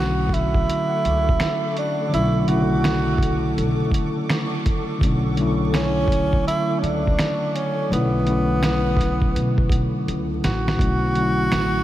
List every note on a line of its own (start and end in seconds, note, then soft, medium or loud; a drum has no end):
0.00 0.64 B1 loud
0.00 2.09 D3 medium
0.00 2.11 F#3 medium
0.00 2.12 A3 medium
0.00 2.14 C#4 medium
0.00 2.15 E4 medium
0.00 0.35 F#4 medium
0.00 0.72 F#4 medium
0.00 10.75 A4 medium
0.00 10.75 F#5 medium
0.00 10.75 C#6 medium
0.00 10.75 D6 medium
0.29 kick medium
0.34 1.77 E4 loud
0.34 closed hi-hat medium
0.54 kick medium
0.69 closed hi-hat medium
1.05 1.37 C#2 medium
1.05 closed hi-hat medium
1.29 kick medium
1.40 finger snap loud
1.40 snare loud
1.40 closed hi-hat medium
1.77 2.11 D4 medium
1.77 closed hi-hat medium
2.09 2.41 D3 medium
2.09 2.42 F#3 medium
2.09 2.43 A3 medium
2.14 3.54 B1 loud
2.14 2.43 C#4 medium
2.14 2.50 E4 loud
2.14 2.44 E4 medium
2.14 closed hi-hat medium
2.45 2.55 C#3 medium
2.45 3.59 F#3 medium
2.45 3.60 A3 medium
2.45 3.93 F#4 loud
2.45 closed hi-hat medium
2.50 3.61 D3 medium
2.50 3.60 C#4 medium
2.50 3.61 E4 medium
2.84 finger snap medium
2.84 snare loud
2.84 closed hi-hat medium
3.18 kick medium
3.23 closed hi-hat medium
3.58 3.90 B1 medium
3.58 closed hi-hat medium
3.92 kick medium
3.92 closed hi-hat medium
4.29 finger snap medium
4.29 snare loud
4.29 closed hi-hat medium
4.66 kick loud
4.66 closed hi-hat medium
4.99 6.42 B1 medium
4.99 5.30 D3 medium
4.99 5.31 F#3 medium
4.99 5.32 A3 medium
4.99 kick loud
5.03 5.33 C#4 medium
5.03 5.34 E4 medium
5.03 closed hi-hat medium
5.36 6.48 D3 medium
5.36 6.49 F#3 medium
5.36 6.49 A3 medium
5.36 closed hi-hat medium
5.40 6.50 C#4 medium
5.40 6.51 E4 medium
5.74 6.43 C#4 loud
5.74 finger snap medium
5.74 snare loud
5.74 closed hi-hat medium
6.08 kick loud
6.12 closed hi-hat medium
6.33 kick medium
6.47 6.81 E4 loud
6.47 closed hi-hat medium
6.79 7.15 C#2 medium
6.79 6.85 C#4 medium
6.83 7.57 D4 loud
6.83 closed hi-hat medium
7.07 kick medium
7.19 finger snap medium
7.19 snare loud
7.19 closed hi-hat medium
7.56 7.91 C#4 loud
7.56 closed hi-hat medium
7.89 9.32 B1 loud
7.89 8.20 D3 medium
7.89 8.21 F#3 medium
7.89 8.22 A3 medium
7.89 10.05 B3 loud
7.89 closed hi-hat medium
7.94 8.23 C#4 medium
7.94 8.23 E4 medium
8.24 9.37 D3 medium
8.24 9.37 F#3 medium
8.24 9.38 A3 medium
8.24 closed hi-hat medium
8.29 9.39 C#4 medium
8.29 9.40 E4 medium
8.63 finger snap loud
8.63 snare loud
8.63 closed hi-hat medium
8.97 kick medium
8.97 snare soft
9.01 closed hi-hat medium
9.22 kick medium
9.36 9.68 B2 medium
9.36 closed hi-hat medium
9.58 kick loud
9.69 10.03 B1 medium
9.69 kick loud
9.69 closed hi-hat medium
10.08 10.41 C#2 medium
10.08 closed hi-hat medium
10.44 10.77 A1 medium
10.44 11.84 F#4 loud
10.44 snare loud
10.44 closed hi-hat medium
10.68 snare medium
10.77 11.48 B1 medium
10.77 11.09 D3 medium
10.77 11.09 F#3 medium
10.77 11.10 A3 medium
10.77 kick loud
10.81 11.11 C#4 medium
10.81 11.12 E4 medium
10.81 closed hi-hat medium
11.14 11.84 D3 medium
11.14 11.84 F#3 medium
11.14 11.84 A3 medium
11.14 closed hi-hat medium
11.19 11.84 C#4 medium
11.19 11.84 E4 medium
11.52 11.84 A1 medium
11.52 finger snap medium
11.52 snare loud
11.52 closed hi-hat medium